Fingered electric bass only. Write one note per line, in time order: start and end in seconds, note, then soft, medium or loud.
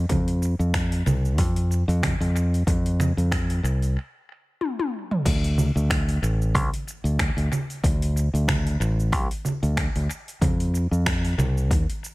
0.09 0.53 F2 medium
0.59 1.01 F2 medium
1.06 1.38 C2 medium
1.38 1.82 F2 medium
1.88 2.13 F2 loud
2.20 2.62 F2 loud
2.67 3.11 F2 medium
3.17 3.59 F2 medium
3.63 3.96 C2 medium
5.25 5.70 D2 medium
5.75 6.17 D2 medium
6.22 6.54 A1 medium
6.54 6.69 C2 medium
7.04 7.29 D2 medium
7.37 7.48 D2 medium
7.84 8.28 D2 medium
8.34 8.75 D2 medium
8.80 9.12 A1 medium
9.12 9.27 C2 medium
9.63 9.87 D2 medium
9.96 10.07 D2 medium
10.41 10.86 F2 medium
10.91 11.33 F2 medium
11.38 11.71 C2 medium
11.71 11.85 D#2 medium